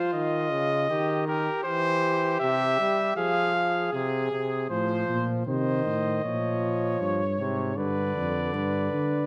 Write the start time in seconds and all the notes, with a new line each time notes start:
Already playing: F3 F4
0.13 D#3 D#5
0.52 C#3
0.90 D#3 G4
1.27 G4 A#4
1.64 E3 G4 C5
2.40 C3 E5
2.79 G3
3.16 F3 G#4 F5
3.55 G#4
3.93 C3 G#4
4.31 C3
4.70 A2 F3 C5
5.08 A#2
5.47 C3 D#3 C5 D#5
5.85 A2
6.24 A#2 F3 C#5
7.00 G2 C#5
7.39 G#2 C3
7.77 G2 D3 B4 D5
8.16 F2
8.54 G2 B4
8.93 D3